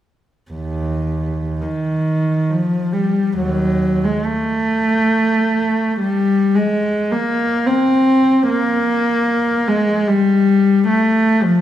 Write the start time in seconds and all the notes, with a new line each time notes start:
0.52 D#2
1.62 D#3
2.50 F3
2.93 G3
3.36 D#2 F#3
4.05 G#3
4.26 A3
6.00 G3
6.56 G#3
7.12 A#3
7.67 C4
8.49 A#3
9.68 G#3
10.09 G3
10.88 A3
11.43 F3